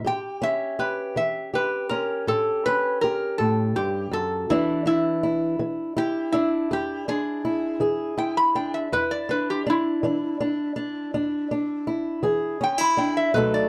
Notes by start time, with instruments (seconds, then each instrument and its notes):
0.04 steel-string acoustic guitar A2 G4, resonator guitar played with a steel bar G5
0.42 steel-string acoustic guitar C#4, resonator guitar played with a steel bar E5
0.79 steel-string acoustic guitar G4, resonator guitar played with a steel bar B4
1.16 steel-string acoustic guitar E3, resonator guitar played with a steel bar E5
1.54 steel-string acoustic guitar G4, resonator guitar played with a steel bar B4
1.89 steel-string acoustic guitar C#4, resonator guitar played with a steel bar A#4
2.27 steel-string acoustic guitar A2 G4, resonator guitar played with a steel bar A4
2.66 steel-string acoustic guitar C#4, resonator guitar played with a steel bar B4
3.01 steel-string acoustic guitar G4, resonator guitar played with a steel bar A#4
3.38 steel-string acoustic guitar A2, resonator guitar played with a steel bar A4
3.76 steel-string acoustic guitar G2, resonator guitar played with a steel bar G4
4.11 steel-string acoustic guitar F#2, resonator guitar played with a steel bar A4
4.50 steel-string acoustic guitar E2 E3 D4, resonator guitar played with a steel bar E4
4.86 steel-string acoustic guitar D4, resonator guitar played with a steel bar E4
5.23 steel-string acoustic guitar E4
5.59 steel-string acoustic guitar E3
5.97 steel-string acoustic guitar E4, resonator guitar played with a steel bar G4
6.32 steel-string acoustic guitar D4, resonator guitar played with a steel bar E4
6.71 steel-string acoustic guitar E2 E4, resonator guitar played with a steel bar G4
7.08 steel-string acoustic guitar D4, resonator guitar played with a steel bar G#4
7.45 steel-string acoustic guitar E4
7.80 steel-string acoustic guitar E3 G#4
8.18 steel-string acoustic guitar E4, resonator guitar played with a steel bar G5
8.37 resonator guitar played with a steel bar B5
8.55 steel-string acoustic guitar D4, resonator guitar played with a steel bar G5
8.74 resonator guitar played with a steel bar E5
8.92 steel-string acoustic guitar E2 E4, resonator guitar played with a steel bar B4
9.11 resonator guitar played with a steel bar D5
9.29 steel-string acoustic guitar D4, resonator guitar played with a steel bar B4
9.50 resonator guitar played with a steel bar G4
9.66 steel-string acoustic guitar D4, resonator guitar played with a steel bar E4
10.03 steel-string acoustic guitar E3 D4
10.40 steel-string acoustic guitar D4
10.76 steel-string acoustic guitar D4
11.14 steel-string acoustic guitar E2 D4
11.51 steel-string acoustic guitar D4
11.87 steel-string acoustic guitar E4
12.23 steel-string acoustic guitar E3 G#4
12.61 steel-string acoustic guitar C#4, resonator guitar played with a steel bar G5
12.78 steel-string acoustic guitar E4, resonator guitar played with a steel bar B5
12.97 steel-string acoustic guitar D4, resonator guitar played with a steel bar G5
13.17 resonator guitar played with a steel bar E5
13.34 steel-string acoustic guitar B2 F#3 A3 D#4 A4, resonator guitar played with a steel bar B4
13.54 resonator guitar played with a steel bar D5